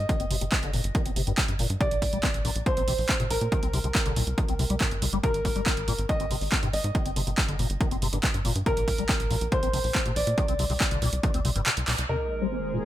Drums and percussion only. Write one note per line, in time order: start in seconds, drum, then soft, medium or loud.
0.09 kick loud
0.09 closed hi-hat medium
0.20 closed hi-hat medium
0.31 open hi-hat loud
0.41 closed hi-hat medium
0.52 kick loud
0.52 clap loud
0.52 closed hi-hat medium
0.63 closed hi-hat medium
0.73 open hi-hat loud
0.84 closed hi-hat medium
0.95 kick loud
0.95 closed hi-hat medium
1.06 closed hi-hat medium
1.16 open hi-hat loud
1.27 closed hi-hat medium
1.38 kick loud
1.38 clap loud
1.38 closed hi-hat medium
1.48 closed hi-hat medium
1.59 open hi-hat loud
1.70 closed hi-hat medium
1.81 kick loud
1.81 closed hi-hat medium
1.91 closed hi-hat medium
2.02 kick medium
2.02 open hi-hat loud
2.13 closed hi-hat medium
2.23 kick loud
2.23 clap loud
2.23 closed hi-hat medium
2.34 closed hi-hat medium
2.45 open hi-hat loud
2.56 closed hi-hat medium
2.66 kick loud
2.66 closed hi-hat medium
2.77 closed hi-hat medium
2.88 open hi-hat loud
2.98 open hi-hat medium
3.09 kick loud
3.09 clap loud
3.09 closed hi-hat medium
3.20 closed hi-hat medium
3.31 open hi-hat loud
3.41 closed hi-hat medium
3.52 kick loud
3.52 closed hi-hat medium
3.63 closed hi-hat medium
3.73 open hi-hat loud
3.84 closed hi-hat medium
3.95 kick loud
3.95 clap loud
3.95 closed hi-hat medium
4.06 closed hi-hat medium
4.16 open hi-hat loud
4.27 closed hi-hat medium
4.38 kick loud
4.38 closed hi-hat medium
4.49 closed hi-hat medium
4.59 open hi-hat loud
4.70 closed hi-hat medium
4.81 kick loud
4.81 clap loud
4.81 closed hi-hat medium
4.91 closed hi-hat medium
5.02 open hi-hat loud
5.13 closed hi-hat medium
5.24 kick loud
5.24 closed hi-hat medium
5.34 closed hi-hat medium
5.45 kick medium
5.45 open hi-hat loud
5.56 closed hi-hat medium
5.66 kick loud
5.66 clap loud
5.66 closed hi-hat medium
5.77 closed hi-hat medium
5.88 open hi-hat loud
5.98 closed hi-hat medium
6.09 kick loud
6.09 closed hi-hat medium
6.20 closed hi-hat medium
6.31 open hi-hat loud
6.41 open hi-hat medium
6.52 kick loud
6.52 clap loud
6.52 closed hi-hat medium
6.63 closed hi-hat medium
6.73 open hi-hat loud
6.84 closed hi-hat medium
6.95 kick loud
6.95 closed hi-hat medium
7.06 closed hi-hat medium
7.16 open hi-hat loud
7.27 closed hi-hat medium
7.38 kick loud
7.38 clap loud
7.38 closed hi-hat medium
7.49 closed hi-hat medium
7.59 open hi-hat loud
7.70 closed hi-hat medium
7.81 kick loud
7.81 closed hi-hat medium
7.91 closed hi-hat medium
8.02 open hi-hat loud
8.13 closed hi-hat medium
8.23 kick loud
8.23 clap loud
8.23 closed hi-hat medium
8.34 closed hi-hat medium
8.45 open hi-hat loud
8.56 closed hi-hat medium
8.66 kick loud
8.66 closed hi-hat medium
8.77 closed hi-hat medium
8.88 kick medium
8.88 open hi-hat loud
8.98 closed hi-hat medium
9.09 kick loud
9.09 clap loud
9.09 closed hi-hat medium
9.20 closed hi-hat medium
9.31 open hi-hat loud
9.41 closed hi-hat medium
9.52 kick loud
9.52 closed hi-hat medium
9.63 closed hi-hat medium
9.73 open hi-hat medium
9.84 open hi-hat medium
9.95 kick loud
9.95 clap loud
9.95 closed hi-hat medium
10.06 closed hi-hat medium
10.16 open hi-hat loud
10.27 closed hi-hat medium
10.38 kick loud
10.38 closed hi-hat medium
10.48 closed hi-hat medium
10.59 open hi-hat loud
10.70 open hi-hat medium
10.81 kick loud
10.81 clap loud
10.81 closed hi-hat medium
10.91 closed hi-hat medium
11.02 open hi-hat loud
11.13 closed hi-hat medium
11.23 kick loud
11.23 closed hi-hat medium
11.34 closed hi-hat medium
11.45 open hi-hat loud
11.56 closed hi-hat medium
11.66 clap loud
11.66 closed hi-hat medium
11.77 closed hi-hat medium
11.88 clap medium
11.88 open hi-hat loud
11.98 closed hi-hat medium